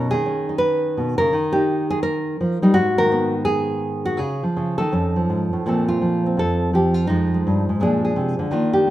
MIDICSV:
0, 0, Header, 1, 2, 480
1, 0, Start_track
1, 0, Tempo, 358637
1, 1780, Time_signature, 4, 2, 24, 8
1, 11916, End_track
2, 0, Start_track
2, 0, Title_t, "Nylon-string guitar"
2, 0, Program_c, 0, 24
2, 0, Note_on_c, 0, 47, 70
2, 0, Note_on_c, 0, 61, 45
2, 0, Note_on_c, 0, 63, 47
2, 0, Note_on_c, 0, 70, 94
2, 138, Note_off_c, 0, 70, 0
2, 143, Note_on_c, 0, 68, 91
2, 173, Note_off_c, 0, 47, 0
2, 177, Note_on_c, 0, 51, 60
2, 342, Note_off_c, 0, 61, 0
2, 348, Note_on_c, 0, 61, 44
2, 652, Note_off_c, 0, 63, 0
2, 658, Note_on_c, 0, 63, 44
2, 775, Note_off_c, 0, 68, 0
2, 781, Note_on_c, 0, 71, 96
2, 1303, Note_on_c, 0, 47, 54
2, 1572, Note_off_c, 0, 71, 0
2, 1577, Note_on_c, 0, 70, 95
2, 1590, Note_off_c, 0, 47, 0
2, 1596, Note_on_c, 0, 49, 62
2, 1759, Note_off_c, 0, 61, 0
2, 1763, Note_off_c, 0, 51, 0
2, 1772, Note_off_c, 0, 49, 0
2, 1779, Note_on_c, 0, 51, 70
2, 2036, Note_off_c, 0, 63, 0
2, 2041, Note_on_c, 0, 67, 89
2, 2081, Note_on_c, 0, 63, 63
2, 2540, Note_off_c, 0, 67, 0
2, 2546, Note_off_c, 0, 70, 0
2, 2549, Note_on_c, 0, 68, 95
2, 2708, Note_off_c, 0, 68, 0
2, 2714, Note_on_c, 0, 70, 100
2, 3205, Note_off_c, 0, 51, 0
2, 3220, Note_on_c, 0, 53, 61
2, 3499, Note_off_c, 0, 63, 0
2, 3506, Note_off_c, 0, 53, 0
2, 3511, Note_on_c, 0, 55, 64
2, 3519, Note_on_c, 0, 63, 74
2, 3659, Note_off_c, 0, 70, 0
2, 3665, Note_on_c, 0, 66, 105
2, 3681, Note_off_c, 0, 55, 0
2, 3682, Note_off_c, 0, 63, 0
2, 3690, Note_on_c, 0, 44, 70
2, 3985, Note_on_c, 0, 51, 70
2, 3992, Note_on_c, 0, 70, 103
2, 4175, Note_on_c, 0, 59, 50
2, 4463, Note_off_c, 0, 66, 0
2, 4610, Note_off_c, 0, 70, 0
2, 4615, Note_on_c, 0, 68, 91
2, 5427, Note_on_c, 0, 66, 82
2, 5565, Note_off_c, 0, 68, 0
2, 5581, Note_on_c, 0, 68, 106
2, 5587, Note_off_c, 0, 44, 0
2, 5590, Note_off_c, 0, 59, 0
2, 5600, Note_off_c, 0, 51, 0
2, 5600, Note_off_c, 0, 66, 0
2, 5606, Note_on_c, 0, 49, 72
2, 5918, Note_off_c, 0, 49, 0
2, 5933, Note_on_c, 0, 53, 60
2, 6111, Note_on_c, 0, 49, 61
2, 6390, Note_off_c, 0, 68, 0
2, 6396, Note_on_c, 0, 69, 79
2, 6413, Note_off_c, 0, 53, 0
2, 6417, Note_off_c, 0, 49, 0
2, 6419, Note_on_c, 0, 51, 60
2, 6586, Note_off_c, 0, 51, 0
2, 6586, Note_on_c, 0, 41, 60
2, 6595, Note_on_c, 0, 61, 42
2, 6604, Note_on_c, 0, 63, 39
2, 6908, Note_on_c, 0, 53, 55
2, 7075, Note_off_c, 0, 41, 0
2, 7089, Note_on_c, 0, 44, 57
2, 7394, Note_off_c, 0, 44, 0
2, 7399, Note_on_c, 0, 45, 59
2, 7545, Note_off_c, 0, 53, 0
2, 7550, Note_off_c, 0, 61, 0
2, 7554, Note_off_c, 0, 63, 0
2, 7557, Note_off_c, 0, 69, 0
2, 7567, Note_off_c, 0, 45, 0
2, 7572, Note_on_c, 0, 46, 63
2, 7580, Note_on_c, 0, 53, 47
2, 7596, Note_on_c, 0, 57, 43
2, 7597, Note_on_c, 0, 60, 48
2, 7609, Note_on_c, 0, 69, 44
2, 7871, Note_off_c, 0, 69, 0
2, 7876, Note_on_c, 0, 65, 71
2, 8046, Note_off_c, 0, 53, 0
2, 8051, Note_on_c, 0, 53, 57
2, 8365, Note_off_c, 0, 60, 0
2, 8381, Note_on_c, 0, 60, 42
2, 8527, Note_on_c, 0, 41, 51
2, 8534, Note_off_c, 0, 65, 0
2, 8541, Note_off_c, 0, 46, 0
2, 8556, Note_on_c, 0, 69, 79
2, 9007, Note_off_c, 0, 53, 0
2, 9012, Note_on_c, 0, 53, 58
2, 9027, Note_off_c, 0, 69, 0
2, 9032, Note_on_c, 0, 67, 64
2, 9291, Note_off_c, 0, 67, 0
2, 9291, Note_on_c, 0, 65, 76
2, 9461, Note_off_c, 0, 60, 0
2, 9467, Note_on_c, 0, 63, 69
2, 9476, Note_off_c, 0, 41, 0
2, 9478, Note_off_c, 0, 65, 0
2, 9491, Note_on_c, 0, 41, 65
2, 9494, Note_off_c, 0, 53, 0
2, 9494, Note_off_c, 0, 57, 0
2, 9499, Note_on_c, 0, 53, 49
2, 9515, Note_on_c, 0, 56, 45
2, 9810, Note_off_c, 0, 56, 0
2, 9826, Note_on_c, 0, 56, 44
2, 9973, Note_off_c, 0, 41, 0
2, 9995, Note_on_c, 0, 43, 61
2, 10268, Note_off_c, 0, 63, 0
2, 10288, Note_off_c, 0, 43, 0
2, 10294, Note_on_c, 0, 44, 61
2, 10433, Note_off_c, 0, 56, 0
2, 10438, Note_on_c, 0, 46, 59
2, 10442, Note_off_c, 0, 53, 0
2, 10448, Note_on_c, 0, 53, 49
2, 10453, Note_on_c, 0, 56, 51
2, 10456, Note_off_c, 0, 44, 0
2, 10469, Note_on_c, 0, 62, 48
2, 10475, Note_on_c, 0, 68, 59
2, 10752, Note_off_c, 0, 68, 0
2, 10769, Note_on_c, 0, 68, 50
2, 10918, Note_off_c, 0, 46, 0
2, 10923, Note_on_c, 0, 48, 63
2, 11223, Note_off_c, 0, 48, 0
2, 11229, Note_on_c, 0, 50, 67
2, 11382, Note_off_c, 0, 53, 0
2, 11383, Note_off_c, 0, 68, 0
2, 11388, Note_on_c, 0, 51, 72
2, 11390, Note_off_c, 0, 56, 0
2, 11396, Note_off_c, 0, 50, 0
2, 11396, Note_on_c, 0, 58, 55
2, 11400, Note_off_c, 0, 62, 0
2, 11406, Note_on_c, 0, 62, 51
2, 11412, Note_on_c, 0, 65, 48
2, 11684, Note_off_c, 0, 65, 0
2, 11690, Note_on_c, 0, 67, 80
2, 11866, Note_off_c, 0, 58, 0
2, 11871, Note_on_c, 0, 58, 59
2, 11916, Note_off_c, 0, 51, 0
2, 11916, Note_off_c, 0, 58, 0
2, 11916, Note_off_c, 0, 62, 0
2, 11916, Note_off_c, 0, 67, 0
2, 11916, End_track
0, 0, End_of_file